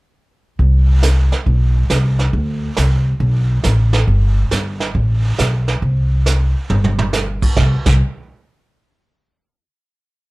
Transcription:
0.59 1.29 C2 medium
0.59 brush sweep medium
0.59 kick soft
1.03 snare medium
1.03 hi-hat pedal medium
1.32 snare soft
1.46 1.83 B1 medium
1.46 brush sweep soft
1.46 kick soft
1.90 2.27 C2 medium
1.90 snare medium
1.90 hi-hat pedal medium
2.19 snare soft
2.33 2.68 D2 medium
2.33 brush sweep soft
2.33 kick soft
2.77 3.14 C2 medium
2.77 snare medium
2.77 hi-hat pedal medium
3.20 3.57 B1 medium
3.20 brush sweep soft
3.20 kick soft
3.64 4.02 A1 medium
3.64 snare medium
3.64 hi-hat pedal medium
3.93 snare soft
4.07 4.43 G1 medium
4.07 brush sweep soft
4.07 kick soft
4.51 4.89 G1 medium
4.51 snare medium
4.51 hi-hat pedal soft
4.80 snare soft
4.95 5.32 A1 medium
4.95 brush sweep soft
4.95 kick soft
5.39 5.76 B1 medium
5.39 snare medium
5.39 hi-hat pedal soft
5.68 snare soft
5.82 6.52 C2 medium
5.82 brush sweep soft
5.82 kick soft
6.26 snare medium
6.26 hi-hat pedal medium
6.70 7.40 G1 medium
6.70 mid tom soft
6.84 mid tom medium
6.99 mid tom medium
7.13 snare soft
7.13 hi-hat pedal medium
7.42 kick medium
7.42 crash medium
7.57 7.73 C2 medium
7.57 kick medium
7.57 snare medium
7.86 8.00 C2 medium
7.86 kick medium
7.86 snare medium
7.86 crash medium

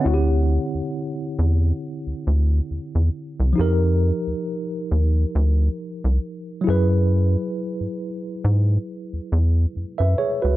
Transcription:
0.00 3.50 D3 medium
0.00 3.51 C4 medium
0.00 0.26 C#5 medium
0.00 0.25 F#5 medium
0.04 0.58 D2 loud
0.04 3.53 E4 medium
0.04 0.13 F#4 medium
0.14 3.57 G4 medium
0.75 0.82 E2 soft
1.39 1.72 E2 medium
2.07 2.14 D2 soft
2.27 2.61 D2 medium
2.71 2.80 E2 soft
2.95 3.10 E2 medium
3.40 3.54 C2 medium
3.53 6.60 F3 medium
3.53 6.61 D#4 medium
3.58 4.12 F2 loud
3.58 6.62 G4 medium
3.58 6.64 A#4 medium
4.27 4.35 D#2 soft
4.92 5.25 D#2 medium
5.35 5.69 D2 loud
6.04 6.19 C2 medium
6.61 10.12 F#3 medium
6.61 10.14 E4 medium
6.67 7.36 F#2 medium
6.67 9.71 G#4 medium
6.67 9.73 B4 medium
7.81 7.88 G#2 soft
8.45 8.78 G#2 medium
9.13 9.20 E2 soft
9.32 9.66 E2 medium
9.77 9.86 F#2 soft
9.98 10.15 F#2 medium
9.98 10.18 B4 medium
9.98 10.17 E5 medium
10.18 10.42 G#4 medium
10.18 10.41 C#5 medium
10.42 10.57 C#2 medium
10.42 10.57 F#4 soft
10.42 10.57 B4 medium

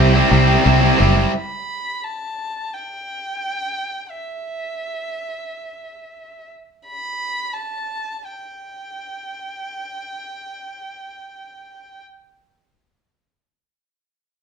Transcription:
0.00 0.21 C2 loud
0.00 0.13 C3 medium
0.00 0.14 G3 medium
0.00 0.14 C4 medium
0.00 0.12 E4 medium
0.00 0.66 G5 loud
0.13 0.30 G3 medium
0.13 0.31 C4 medium
0.13 0.31 E4 medium
0.30 0.56 C2 medium
0.30 0.63 C3 medium
0.30 0.64 G3 medium
0.30 0.64 C4 medium
0.30 0.65 E4 medium
0.64 0.91 C2 medium
0.64 0.98 C3 medium
0.64 0.82 G3 loud
0.64 0.81 C4 loud
0.64 0.80 E4 loud
0.81 0.98 G3 medium
0.81 0.99 C4 medium
0.81 0.99 E4 medium
0.99 1.25 F#1 loud
0.99 1.32 C3 medium
0.99 1.16 G3 medium
0.99 1.15 C4 medium
0.99 1.15 E4 medium
1.16 1.32 G3 medium
1.16 1.32 C4 medium
1.16 1.31 E4 medium
1.37 2.05 B5 medium
2.04 2.75 A5 medium
2.73 4.11 G5 medium
4.10 6.51 E5 soft
6.87 7.55 B5 medium
7.53 8.26 A5 medium
8.24 12.01 G5 soft

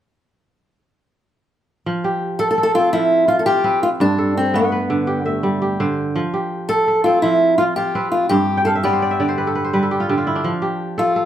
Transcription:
1.86 2.92 F3 medium
2.04 3.46 G4 medium
2.39 2.49 A4 medium
2.39 2.57 A4 medium
2.51 2.62 A4 medium
2.58 3.90 A4 medium
2.63 2.74 A4 medium
2.75 3.64 C4 medium
2.75 2.92 F4 medium
2.93 4.06 F3 medium
2.93 3.28 E4 medium
3.28 3.46 F4 medium
3.28 3.39 F4 medium
3.39 3.45 A4 medium
3.46 4.98 F4 medium
3.46 3.80 G4 medium
3.64 4.60 C4 medium
3.64 4.72 B4 medium
3.83 3.88 F4 medium
4.00 6.20 G2 medium
4.00 4.37 D4 medium
4.18 5.50 A4 medium
4.37 4.55 C4 medium
4.54 5.86 B3 medium
4.54 5.26 B3 medium
4.72 5.86 B4 medium
4.90 5.79 D3 medium
5.07 5.61 G4 medium
5.26 5.58 A3 medium
5.26 6.22 E5 medium
5.43 5.85 G3 medium
5.62 6.33 G4 medium
5.80 6.20 D3 medium
5.80 6.99 C5 medium
6.16 7.22 F3 medium
6.34 7.75 G4 medium
6.69 7.04 A4 medium
6.69 6.87 A4 medium
6.88 8.20 A4 medium
7.04 7.95 C4 medium
7.04 7.22 F4 medium
7.22 8.35 F3 medium
7.22 7.57 E4 medium
7.58 7.63 F4 medium
7.58 7.77 F4 medium
7.76 8.81 F4 medium
7.76 8.11 G4 medium
7.95 8.90 C4 medium
7.95 8.99 B4 medium
8.12 8.29 F4 medium
8.29 10.49 G2 medium
8.29 8.64 G4 medium
8.57 9.51 G5 medium
8.65 8.70 A4 medium
8.65 9.17 F5 medium
8.75 9.10 E5 medium
8.83 9.35 B3 medium
8.83 9.87 G4 medium
8.83 9.02 D5 medium
8.93 9.28 C5 medium
9.02 9.20 D5 medium
9.11 10.06 E5 medium
9.20 10.08 D3 medium
9.20 10.31 D5 medium
9.29 9.61 C5 medium
9.38 9.55 B4 medium
9.47 9.82 A4 medium
9.55 9.73 B4 medium
9.64 10.83 C5 medium
9.73 10.14 G3 medium
9.73 10.96 B4 medium
9.83 10.97 A4 medium
9.91 10.09 G4 medium
10.00 10.17 F4 medium
10.09 10.49 D3 medium
10.09 10.62 G4 medium
10.17 11.25 F4 medium
10.27 10.50 E4 medium
10.35 11.25 D4 medium
10.44 11.25 F3 medium
10.62 11.25 G4 medium
10.98 11.25 F4 medium
10.98 11.16 A4 medium
11.16 11.25 A4 medium

